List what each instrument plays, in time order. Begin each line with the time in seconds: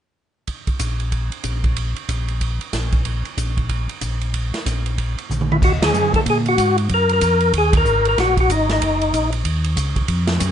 0.47 kick, ride
0.67 kick, ride
0.79 tonewheel organ A#1, kick, hi-hat pedal, ride
1.00 ride
1.12 kick, ride
1.32 ride
1.44 tonewheel organ A#1, kick, hi-hat pedal, ride
1.64 kick, ride
1.76 kick, ride
1.96 ride
2.09 tonewheel organ A#1, kick, hi-hat pedal, ride
2.28 ride
2.41 kick, ride
2.61 ride
2.73 tonewheel organ A#1, kick, snare, hi-hat pedal, ride
2.92 kick, ride
3.05 kick, ride
3.25 ride
3.37 tonewheel organ A#1, kick, hi-hat pedal, ride
3.57 kick, ride
3.69 kick, ride
3.89 ride
4.01 tonewheel organ A#1, kick, hi-hat pedal, ride
4.21 ride
4.34 kick, ride
4.54 snare, ride
4.66 tonewheel organ A#1, kick, hi-hat pedal, ride
4.86 ride
4.98 kick, ride
5.18 ride
5.29 tonewheel organ A#1, hi-hat pedal, mid tom
5.41 mid tom
5.52 tonewheel organ E4, mid tom
5.62 tonewheel organ D#2 F#4, kick, crash
5.82 tonewheel organ G#4, snare, ride
5.94 tonewheel organ F#2, hi-hat pedal
6.14 tonewheel organ F#2 A4, kick, ride
6.26 tonewheel organ A#2, kick, ride
6.30 tonewheel organ G#4
6.46 tonewheel organ F#4, ride
6.57 tonewheel organ G#2, kick, hi-hat pedal, ride
6.78 ride
6.89 tonewheel organ F#2, kick, ride
6.94 tonewheel organ A#4
7.09 tonewheel organ A#4, ride
7.21 tonewheel organ F2, kick, hi-hat pedal, ride
7.40 ride
7.53 tonewheel organ D#2, kick, ride
7.58 tonewheel organ G#4
7.73 kick, ride
7.77 tonewheel organ A#4
7.85 tonewheel organ G#1, hi-hat pedal
8.05 tonewheel organ A#4, ride
8.18 tonewheel organ A#1 F#4, kick, snare, ride
8.37 tonewheel organ F#4, kick, ride
8.49 tonewheel organ G#1 D#4, kick, hi-hat pedal, ride
8.69 tonewheel organ D#4, snare, ride
8.81 tonewheel organ F#1, kick, ride
9.01 ride
9.13 tonewheel organ A#1, kick, hi-hat pedal, ride
9.32 ride
9.45 tonewheel organ D#2, kick, ride
9.64 ride
9.77 tonewheel organ C#2, kick, hi-hat pedal, ride
9.96 tonewheel organ C#2, kick, ride
10.08 tonewheel organ F2, kick, ride
10.27 snare, ride
10.40 tonewheel organ F#2, kick, hi-hat pedal, ride